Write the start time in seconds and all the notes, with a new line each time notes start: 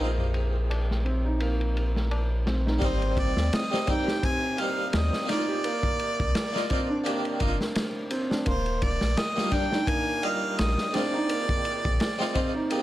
Already playing: G#3 G4
0.00 A#1 A#3 C4 D#4 F4
0.18 tabla ge
0.34 ride
0.70 ride, tabla na
0.91 snare
1.05 C4, ride
1.25 D#4
1.40 A#3, ride
1.61 ride
1.77 ride
1.96 snare
2.11 ride, tabla na
2.46 C4, snare, ride
2.66 D#4, snare
2.78 G#1 G3 A#3 C4, kick, ride
2.83 C4 D#4 C5
3.02 ride
3.17 D5, kick, ride
3.37 D#2, snare
3.53 D#5, snare, ride
3.70 G3 A#3 C4 D#4, snare
3.86 G3 A#3 C4 D#4 G4, kick, ride
3.90 G5
4.07 G4, snare
4.22 C4 G#5, kick, ride
4.57 G3 A#3 C4 D#4 F5, ride
4.89 F5
4.93 D#2, snare, ride
4.97 D#5
5.13 snare
5.25 A#3 D#4 D5, ride
5.30 F4 D5, snare
5.48 G4
5.64 A#3, ride
5.83 kick
5.99 ride
6.20 C2, kick
6.35 snare, ride
6.53 A#3 D4 D#4 F4, snare
6.69 A#3 C4 D4 D#4 F4, kick, ride
6.89 D4
7.04 D#3 A#3 D4 G4, ride
7.25 ride
7.40 G1 A#3 D4 D#4 F4, kick, ride
7.61 snare
7.75 snare, ride
8.11 C4, ride
8.30 D4, snare
8.45 D#1 A#3 C5, kick, ride
8.66 ride
8.82 D5, kick, ride
9.01 A#1, snare
9.17 D#5, snare, ride
9.36 G3 A#3 D4 F4, snare
9.51 G3 A#3 D4 A#4 G5, kick, ride
9.71 D#4, snare
9.87 A#3 G#5, kick, ride
10.22 G3 A#3 F4 D#5 F5, ride
10.59 A#1 D#5, snare, ride
10.78 snare
10.91 G#3 C4 D4 D5, ride
10.95 D#3 F4, snare
11.13 D#4
11.29 A#3, ride
11.49 kick
11.65 ride
11.85 A#1, kick
12.00 snare, ride
12.18 G#3 C4 D#4 F4, snare
12.34 G#3 C4 D#4 F4, kick, ride
12.55 D#4
12.70 G#3 A#3 C4 D#4 G4, ride